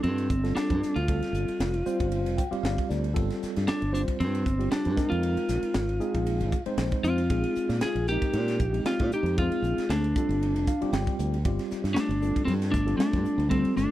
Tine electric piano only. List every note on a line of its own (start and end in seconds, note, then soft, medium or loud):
0.00 0.33 G3 medium
0.00 0.33 C4 medium
0.00 0.34 F4 medium
0.00 0.33 A4 medium
0.44 0.99 G3 medium
0.44 0.99 C4 medium
0.44 0.98 F4 medium
0.44 0.98 A4 medium
1.08 1.75 G3 medium
1.08 1.75 C4 medium
1.08 1.75 F4 medium
1.08 1.75 A4 medium
1.86 2.41 G3 medium
1.86 2.41 C4 medium
1.86 2.41 F4 medium
1.86 2.41 C5 medium
2.38 2.51 G5 medium
2.51 3.06 G3 medium
2.51 3.06 C4 medium
2.51 3.06 F4 medium
2.51 3.06 G4 medium
2.51 2.62 F5 medium
2.63 2.87 F5 medium
2.89 3.14 D5 medium
3.14 3.81 G3 medium
3.14 3.82 C4 medium
3.14 3.82 F4 medium
3.14 3.82 A4 medium
3.92 4.48 G3 medium
3.92 4.48 C4 medium
3.92 4.48 F4 medium
3.92 4.48 C5 medium
4.59 4.97 G3 medium
4.59 4.95 C4 medium
4.59 4.97 F4 medium
4.59 4.97 G4 medium
4.96 5.85 G#3 medium
4.96 5.85 C4 medium
4.96 5.85 D#4 medium
4.96 5.85 A#4 medium
6.00 6.56 G#3 medium
6.00 6.55 C4 medium
6.00 6.55 D#4 medium
6.00 6.55 G#4 medium
6.66 7.21 G#3 medium
6.66 7.21 C4 medium
6.66 7.21 D#4 medium
6.66 7.21 C5 medium
7.30 7.97 G#3 medium
7.30 7.97 C4 medium
7.30 7.97 D#4 medium
7.30 7.97 G#4 medium
8.08 8.63 G#3 medium
8.08 8.63 C4 medium
8.08 8.63 D#4 medium
8.08 8.63 A#4 medium
8.73 9.28 G#3 medium
8.73 9.28 C4 medium
8.73 9.28 D#4 medium
8.73 9.28 G4 medium
9.37 10.04 G#3 medium
9.37 10.04 C4 medium
9.37 10.04 D#4 medium
9.37 10.04 G#4 medium
10.17 10.71 G3 medium
10.17 10.71 C4 medium
10.17 10.71 F4 medium
10.17 10.71 A4 medium
10.68 10.91 F5 medium
10.81 11.35 G3 medium
10.81 11.36 C4 medium
10.81 11.35 F4 medium
10.81 11.36 G4 medium
10.93 11.41 G5 medium
11.45 12.11 G3 medium
11.45 12.11 C4 medium
11.45 12.11 F4 medium
11.45 12.12 G4 medium
12.22 12.77 G3 medium
12.22 12.77 C4 medium
12.22 12.77 F4 medium
12.22 12.77 A4 medium
12.87 13.42 G3 medium
12.87 13.42 C4 medium
12.87 13.42 F4 medium
12.87 13.42 A4 medium
13.51 13.91 G3 medium
13.51 13.91 C4 medium
13.51 13.91 F4 medium
13.51 13.91 A4 medium